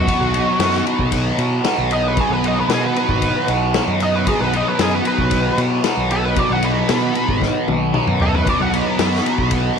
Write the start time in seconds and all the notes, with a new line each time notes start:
Already playing: F#4
0.07 B2 F#3 B3 D#4, kick, ride
0.21 B1
0.34 F#3 B3 D#4, ride
0.59 F#2 B2 F#3 B3 D#4, snare, ride
0.85 F#3 B3 D#4, ride
0.99 B1, kick
1.12 kick, ride
1.38 B2, ride
1.64 B2 F#3 B3 D#4, snare, ride
1.78 B1
1.91 F#3 B3 D#4 D#5, ride
2.08 B4
2.17 B2 F#3 B3 D#4 G#4, kick, ride
2.30 B1 B4
2.44 F#3 B3 D#4 D#5, ride
2.59 B4
2.68 B2 F#3 B3 D#4 G#4, snare, ride
2.86 B4
2.96 F#3 B3 D#4 B4, ride
3.09 G#1, kick
3.22 kick, ride
3.48 B1, ride
3.74 B2 F#3 B3 D#4, snare, ride
3.88 F#2
4.00 F#3 B3 D#4 D#5, ride
4.15 B4
4.27 B2 F#3 B3 D#4 G#4, kick, ride
4.40 B1 B4
4.53 F#3 B3 D#4 D#5, ride
4.68 B4
4.79 F#2 B2 F#3 B3 D#4 G#4, snare, ride
4.95 B4
5.05 F#3 B3 D#4 B4, ride
5.18 B1, kick
5.31 kick, ride
5.58 B2, ride
5.84 B2 F#3 B3 D#4, snare, ride
5.97 B1
6.10 F#3 B3 D#4 A4, ride
6.25 B4
6.36 B2 F#3 B3 D#4 D5, kick, ride
6.50 B1 F#5
6.62 F#3 B3 D#4 B5, ride
6.89 B2 F#3 B3 D#4 B5, snare, ride
7.15 F#3 B3 D#4, ride
7.29 G#1, kick
7.42 kick, snare
7.68 B1, high tom
7.93 B2 F#3 B3 D#4, mid tom
8.07 F#2, mid tom
8.20 F#3 B3 D#4 A4, floor tom
8.34 B4, floor tom
8.46 B2 F#3 B3 D#4 D5, kick, ride
8.60 B1 F#5
8.73 F#3 B3 D#4 B5, ride
8.99 F#2 B2 F#3 B3 D#4 B5, snare, ride
9.25 F#3 B3 D#4, ride
9.38 B1, kick
9.51 kick, ride